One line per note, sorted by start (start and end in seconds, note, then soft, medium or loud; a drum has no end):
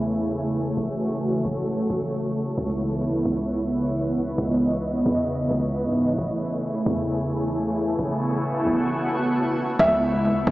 0.00 0.73 E2 loud
0.00 6.14 C#3 medium
0.00 6.14 E3 medium
0.00 2.54 A3 medium
0.00 0.73 E4 medium
0.00 0.75 G#4 medium
0.00 6.14 C#5 medium
0.77 1.42 A1 loud
0.77 2.56 F#4 medium
0.77 2.56 A4 medium
1.45 1.88 A1 loud
1.90 2.33 A1 loud
2.57 3.04 C#2 loud
2.57 6.15 B3 medium
2.57 6.15 E4 medium
2.57 4.36 E4 medium
3.03 3.15 D#2 loud
3.14 3.25 C#2 loud
3.25 4.34 C#2 loud
4.38 5.03 C#2 loud
4.38 6.17 D#5 medium
5.06 5.49 E2 loud
5.51 5.86 C#2 loud
5.85 6.17 G#2 medium
6.18 6.62 A1 loud
6.18 9.76 C#3 medium
6.18 9.76 E3 medium
6.18 7.97 A3 medium
6.18 9.76 A3 medium
6.18 9.76 E4 medium
6.18 7.97 G#4 medium
6.18 9.76 C#5 medium
6.86 7.95 E2 loud
7.99 8.64 A1 loud
7.99 9.78 B3 medium
7.99 9.78 F#4 medium
8.67 8.88 A1 loud
9.79 10.26 C#2 loud
9.79 10.51 C#3 medium
9.79 10.51 E3 medium
9.79 10.51 G#3 medium
9.79 10.51 B3 medium
9.79 10.51 E4 medium
9.79 10.51 E5 loud
9.79 kick loud
10.24 10.37 D#2 loud
10.36 10.46 C#2 loud
10.47 10.51 C#2 loud
10.47 kick medium